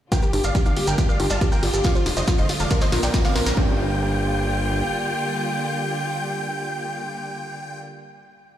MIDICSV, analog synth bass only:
0, 0, Header, 1, 2, 480
1, 0, Start_track
1, 0, Key_signature, -2, "minor"
1, 0, Tempo, 431655
1, 131, Time_signature, 4, 2, 24, 8
1, 9539, End_track
2, 0, Start_track
2, 0, Title_t, "Analog synth bass"
2, 0, Program_c, 0, 38
2, 370, Note_on_c, 0, 31, 90
2, 446, Note_off_c, 0, 31, 0
2, 491, Note_on_c, 0, 31, 80
2, 566, Note_off_c, 0, 31, 0
2, 731, Note_on_c, 0, 31, 73
2, 807, Note_off_c, 0, 31, 0
2, 971, Note_on_c, 0, 31, 76
2, 1047, Note_off_c, 0, 31, 0
2, 1332, Note_on_c, 0, 31, 90
2, 1407, Note_off_c, 0, 31, 0
2, 1451, Note_on_c, 0, 31, 80
2, 1527, Note_off_c, 0, 31, 0
2, 1811, Note_on_c, 0, 31, 93
2, 1887, Note_off_c, 0, 31, 0
2, 1931, Note_on_c, 0, 31, 80
2, 2007, Note_off_c, 0, 31, 0
2, 2291, Note_on_c, 0, 29, 96
2, 2366, Note_off_c, 0, 29, 0
2, 2410, Note_on_c, 0, 29, 83
2, 2486, Note_off_c, 0, 29, 0
2, 2649, Note_on_c, 0, 29, 76
2, 2726, Note_off_c, 0, 29, 0
2, 2890, Note_on_c, 0, 29, 80
2, 2966, Note_off_c, 0, 29, 0
2, 3250, Note_on_c, 0, 34, 93
2, 3326, Note_off_c, 0, 34, 0
2, 3370, Note_on_c, 0, 34, 86
2, 3446, Note_off_c, 0, 34, 0
2, 3731, Note_on_c, 0, 34, 94
2, 3806, Note_off_c, 0, 34, 0
2, 3850, Note_on_c, 0, 34, 85
2, 3926, Note_off_c, 0, 34, 0
2, 3971, Note_on_c, 0, 31, 99
2, 5367, Note_off_c, 0, 31, 0
2, 9539, End_track
0, 0, End_of_file